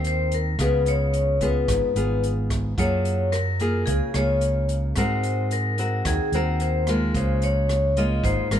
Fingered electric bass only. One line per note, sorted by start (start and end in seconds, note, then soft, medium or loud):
0.00 0.55 D#2 medium
0.58 1.64 C#2 medium
1.68 1.81 G#1 medium
1.95 2.74 G#1 medium
2.78 3.83 F#2 medium
3.87 4.00 C#2 medium
4.14 4.92 C#2 medium
4.96 6.01 G#2 medium
6.05 6.18 D#2 medium
6.32 7.10 D#2 medium
7.14 8.20 C#2 medium
8.24 8.36 G#1 medium
8.51 8.60 G#1 medium